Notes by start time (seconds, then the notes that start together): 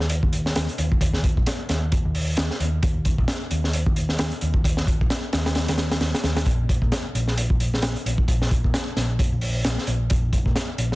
Already playing: D#2
0.00 snare
0.10 closed hi-hat
0.23 D#2, kick
0.33 closed hi-hat
0.46 snare
0.56 D#2, snare, closed hi-hat
0.69 closed hi-hat
0.78 D#2, closed hi-hat
0.92 kick
1.01 D#2, kick, closed hi-hat
1.13 snare
1.24 kick, closed hi-hat
1.37 A#1, kick
1.46 snare, closed hi-hat
1.69 D#2, snare, closed hi-hat
1.92 kick, closed hi-hat
2.05 D#2
2.15 open hi-hat
2.37 D#2, snare, closed hi-hat
2.51 snare
2.60 D#2, closed hi-hat
2.83 D#2, kick, closed hi-hat
3.05 kick, closed hi-hat
3.18 A#1, kick
3.28 snare, closed hi-hat
3.51 D#2, closed hi-hat
3.64 snare
3.73 closed hi-hat
3.86 D#2, kick
3.96 closed hi-hat
4.09 snare
4.19 D#2, snare, closed hi-hat
4.31 closed hi-hat
4.41 D#2, closed hi-hat
4.54 kick
4.64 D#2, kick, closed hi-hat
4.77 snare
4.87 kick, closed hi-hat
5.01 A#1, kick
5.10 snare, closed hi-hat
5.33 D#2, snare, closed hi-hat
5.46 snare, closed hi-hat
5.55 snare, closed hi-hat
5.68 D#2, snare, closed hi-hat
5.78 snare, closed hi-hat
5.91 snare, closed hi-hat
6.01 D#2, snare, closed hi-hat
6.14 snare, closed hi-hat
6.24 D#2, snare, closed hi-hat
6.37 snare, closed hi-hat
6.46 A#1, kick, closed hi-hat
6.69 kick, closed hi-hat
6.82 A#2, kick
6.92 snare, closed hi-hat
7.15 A#1, closed hi-hat
7.28 snare
7.38 closed hi-hat
7.50 A#1, kick
7.60 closed hi-hat
7.74 snare
7.82 A#1, snare, closed hi-hat
7.96 closed hi-hat
8.06 A#1, closed hi-hat
8.18 kick
8.28 A#1, kick, closed hi-hat
8.42 snare
8.51 kick, closed hi-hat
8.64 A#2, kick
8.74 snare, closed hi-hat
8.96 A#1, snare, closed hi-hat
9.19 kick, closed hi-hat
9.32 A#1
9.41 open hi-hat
9.64 A#1, snare, closed hi-hat
9.78 snare
9.87 A#1, closed hi-hat
10.10 A#1, kick, closed hi-hat
10.33 kick, closed hi-hat
10.46 A#2, kick
10.56 snare, closed hi-hat
10.78 A#1, closed hi-hat